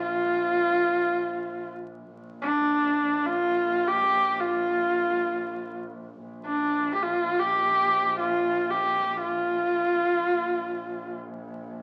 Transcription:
0, 0, Header, 1, 3, 480
1, 0, Start_track
1, 0, Tempo, 500000
1, 11350, End_track
2, 0, Start_track
2, 0, Title_t, "Horsehead fiddle"
2, 0, Program_c, 0, 110
2, 23, Note_on_c, 0, 65, 87
2, 1649, Note_off_c, 0, 65, 0
2, 2320, Note_on_c, 0, 62, 74
2, 3132, Note_on_c, 0, 65, 82
2, 3146, Note_off_c, 0, 62, 0
2, 3719, Note_on_c, 0, 67, 90
2, 3733, Note_off_c, 0, 65, 0
2, 4224, Note_on_c, 0, 65, 82
2, 4239, Note_off_c, 0, 67, 0
2, 5551, Note_off_c, 0, 65, 0
2, 6200, Note_on_c, 0, 62, 77
2, 6635, Note_off_c, 0, 62, 0
2, 6666, Note_on_c, 0, 67, 63
2, 6746, Note_on_c, 0, 65, 79
2, 6760, Note_off_c, 0, 67, 0
2, 7094, Note_on_c, 0, 67, 87
2, 7108, Note_off_c, 0, 65, 0
2, 7858, Note_off_c, 0, 67, 0
2, 7864, Note_on_c, 0, 65, 80
2, 8353, Note_on_c, 0, 67, 82
2, 8367, Note_off_c, 0, 65, 0
2, 8846, Note_off_c, 0, 67, 0
2, 8851, Note_on_c, 0, 65, 81
2, 10737, Note_off_c, 0, 65, 0
2, 11350, End_track
3, 0, Start_track
3, 0, Title_t, "Double bass"
3, 0, Program_c, 1, 43
3, 0, Note_on_c, 1, 34, 58
3, 2029, Note_off_c, 1, 34, 0
3, 2034, Note_on_c, 1, 34, 56
3, 5951, Note_off_c, 1, 34, 0
3, 5957, Note_on_c, 1, 34, 60
3, 9863, Note_off_c, 1, 34, 0
3, 9869, Note_on_c, 1, 34, 60
3, 11350, Note_off_c, 1, 34, 0
3, 11350, End_track
0, 0, End_of_file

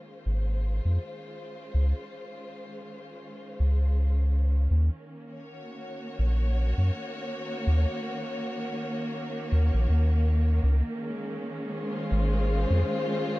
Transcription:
0, 0, Header, 1, 3, 480
1, 0, Start_track
1, 0, Tempo, 740741
1, 1129, Time_signature, 4, 2, 24, 8
1, 8680, End_track
2, 0, Start_track
2, 0, Title_t, "String section"
2, 0, Program_c, 0, 48
2, 0, Note_on_c, 0, 51, 70
2, 0, Note_on_c, 0, 56, 61
2, 0, Note_on_c, 0, 58, 73
2, 0, Note_on_c, 0, 61, 55
2, 0, Note_on_c, 0, 65, 70
2, 0, Note_on_c, 0, 72, 68
2, 761, Note_off_c, 0, 58, 0
2, 3040, Note_off_c, 0, 51, 0
2, 3048, Note_on_c, 0, 51, 67
2, 3049, Note_off_c, 0, 56, 0
2, 3049, Note_off_c, 0, 65, 0
2, 3049, Note_off_c, 0, 72, 0
2, 3255, Note_on_c, 0, 58, 77
2, 3445, Note_on_c, 0, 73, 74
2, 3550, Note_on_c, 0, 66, 63
2, 6888, Note_off_c, 0, 61, 0
2, 6888, Note_off_c, 0, 66, 0
2, 6888, Note_off_c, 0, 73, 0
2, 7084, Note_on_c, 0, 61, 76
2, 7110, Note_on_c, 0, 56, 75
2, 7594, Note_on_c, 0, 72, 60
2, 7599, Note_on_c, 0, 65, 65
2, 8442, Note_off_c, 0, 58, 0
2, 8680, Note_off_c, 0, 51, 0
2, 8680, Note_off_c, 0, 56, 0
2, 8680, Note_off_c, 0, 61, 0
2, 8680, Note_off_c, 0, 65, 0
2, 8680, Note_off_c, 0, 72, 0
2, 8680, End_track
3, 0, Start_track
3, 0, Title_t, "Sub bass"
3, 0, Program_c, 1, 38
3, 167, Note_on_c, 1, 32, 75
3, 523, Note_off_c, 1, 32, 0
3, 550, Note_on_c, 1, 41, 76
3, 637, Note_off_c, 1, 41, 0
3, 1128, Note_on_c, 1, 37, 101
3, 1253, Note_off_c, 1, 37, 0
3, 2331, Note_on_c, 1, 37, 85
3, 3031, Note_off_c, 1, 37, 0
3, 3049, Note_on_c, 1, 39, 97
3, 3173, Note_off_c, 1, 39, 0
3, 4010, Note_on_c, 1, 34, 79
3, 4364, Note_off_c, 1, 34, 0
3, 4391, Note_on_c, 1, 42, 77
3, 4477, Note_off_c, 1, 42, 0
3, 4969, Note_on_c, 1, 39, 94
3, 5094, Note_off_c, 1, 39, 0
3, 6169, Note_on_c, 1, 39, 74
3, 6293, Note_off_c, 1, 39, 0
3, 6310, Note_on_c, 1, 34, 85
3, 6397, Note_off_c, 1, 34, 0
3, 6409, Note_on_c, 1, 39, 83
3, 6870, Note_off_c, 1, 39, 0
3, 6890, Note_on_c, 1, 37, 98
3, 7014, Note_off_c, 1, 37, 0
3, 7849, Note_on_c, 1, 32, 76
3, 8204, Note_off_c, 1, 32, 0
3, 8230, Note_on_c, 1, 41, 78
3, 8317, Note_off_c, 1, 41, 0
3, 8680, End_track
0, 0, End_of_file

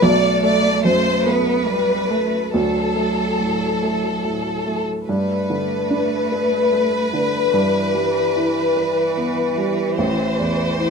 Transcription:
0, 0, Header, 1, 4, 480
1, 0, Start_track
1, 0, Key_signature, 1, "major"
1, 0, Tempo, 841515
1, 10, Time_signature, 6, 3, 24, 8
1, 2890, Tempo, 816327
1, 6320, End_track
2, 0, Start_track
2, 0, Title_t, "Violin section"
2, 0, Program_c, 0, 48
2, 14, Note_on_c, 0, 74, 89
2, 241, Note_off_c, 0, 74, 0
2, 248, Note_on_c, 0, 74, 86
2, 478, Note_off_c, 0, 74, 0
2, 483, Note_on_c, 0, 72, 83
2, 716, Note_off_c, 0, 72, 0
2, 716, Note_on_c, 0, 71, 70
2, 1441, Note_off_c, 0, 71, 0
2, 1449, Note_on_c, 0, 69, 73
2, 2756, Note_off_c, 0, 69, 0
2, 2893, Note_on_c, 0, 71, 72
2, 5754, Note_off_c, 0, 71, 0
2, 5777, Note_on_c, 0, 72, 71
2, 6320, Note_off_c, 0, 72, 0
2, 6320, End_track
3, 0, Start_track
3, 0, Title_t, "Cello"
3, 0, Program_c, 1, 42
3, 15, Note_on_c, 1, 57, 84
3, 722, Note_on_c, 1, 59, 77
3, 731, Note_off_c, 1, 57, 0
3, 957, Note_on_c, 1, 55, 76
3, 966, Note_off_c, 1, 59, 0
3, 1200, Note_on_c, 1, 57, 71
3, 1208, Note_off_c, 1, 55, 0
3, 1442, Note_off_c, 1, 57, 0
3, 1448, Note_on_c, 1, 54, 72
3, 2756, Note_off_c, 1, 54, 0
3, 2891, Note_on_c, 1, 57, 68
3, 4315, Note_off_c, 1, 57, 0
3, 4347, Note_on_c, 1, 52, 68
3, 6320, Note_off_c, 1, 52, 0
3, 6320, End_track
4, 0, Start_track
4, 0, Title_t, "Grand piano"
4, 0, Program_c, 2, 0
4, 0, Control_c, 2, 64, 127
4, 14, Note_on_c, 2, 35, 89
4, 20, Control_c, 2, 64, 0
4, 106, Control_c, 2, 64, 127
4, 247, Note_on_c, 2, 57, 67
4, 484, Note_on_c, 2, 42, 59
4, 625, Note_off_c, 2, 57, 0
4, 722, Note_on_c, 2, 57, 63
4, 865, Note_off_c, 2, 42, 0
4, 1105, Note_off_c, 2, 57, 0
4, 1200, Note_on_c, 2, 57, 52
4, 1422, Note_off_c, 2, 35, 0
4, 1442, Note_off_c, 2, 57, 0
4, 1448, Note_on_c, 2, 38, 72
4, 1454, Control_c, 2, 64, 0
4, 1552, Control_c, 2, 64, 127
4, 1689, Note_on_c, 2, 57, 53
4, 1932, Note_on_c, 2, 45, 47
4, 2078, Note_off_c, 2, 57, 0
4, 2181, Note_on_c, 2, 57, 53
4, 2319, Note_off_c, 2, 45, 0
4, 2420, Note_on_c, 2, 45, 48
4, 2562, Note_off_c, 2, 57, 0
4, 2662, Note_on_c, 2, 57, 48
4, 2800, Note_off_c, 2, 45, 0
4, 2871, Note_off_c, 2, 38, 0
4, 2895, Note_off_c, 2, 57, 0
4, 2902, Control_c, 2, 64, 0
4, 2903, Note_on_c, 2, 43, 72
4, 3008, Control_c, 2, 64, 127
4, 3144, Note_on_c, 2, 50, 53
4, 3383, Note_on_c, 2, 62, 54
4, 3527, Note_off_c, 2, 50, 0
4, 3627, Note_on_c, 2, 71, 55
4, 3765, Note_off_c, 2, 62, 0
4, 3865, Note_on_c, 2, 57, 49
4, 4007, Note_off_c, 2, 71, 0
4, 4105, Note_on_c, 2, 50, 49
4, 4246, Note_off_c, 2, 57, 0
4, 4321, Note_off_c, 2, 43, 0
4, 4342, Note_off_c, 2, 50, 0
4, 4342, Note_on_c, 2, 43, 70
4, 4349, Control_c, 2, 64, 0
4, 4447, Control_c, 2, 64, 127
4, 4583, Note_on_c, 2, 55, 49
4, 4825, Note_on_c, 2, 64, 53
4, 4965, Note_off_c, 2, 55, 0
4, 5066, Note_on_c, 2, 71, 56
4, 5207, Note_off_c, 2, 64, 0
4, 5303, Note_on_c, 2, 59, 51
4, 5447, Note_off_c, 2, 71, 0
4, 5544, Note_on_c, 2, 55, 51
4, 5684, Note_off_c, 2, 59, 0
4, 5755, Note_off_c, 2, 43, 0
4, 5780, Note_off_c, 2, 55, 0
4, 5780, Note_on_c, 2, 33, 71
4, 5789, Control_c, 2, 64, 0
4, 5900, Control_c, 2, 64, 127
4, 6016, Note_on_c, 2, 40, 53
4, 6254, Note_on_c, 2, 64, 54
4, 6320, Note_off_c, 2, 33, 0
4, 6320, Note_off_c, 2, 40, 0
4, 6320, Note_off_c, 2, 64, 0
4, 6320, End_track
0, 0, End_of_file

